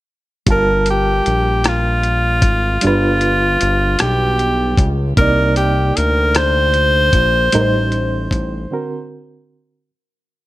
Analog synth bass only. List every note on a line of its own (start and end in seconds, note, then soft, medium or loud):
0.48 1.22 G1 medium
1.27 2.45 A#1 medium
2.43 2.79 G#1 medium
2.84 3.58 G1 loud
3.62 3.97 G1 medium
4.02 4.75 B1 medium
4.78 5.14 C#2 medium
5.19 5.93 C2 loud
5.98 7.11 D2 medium
7.14 7.49 A#1 medium
7.55 8.29 A1 medium
8.32 8.67 A1 medium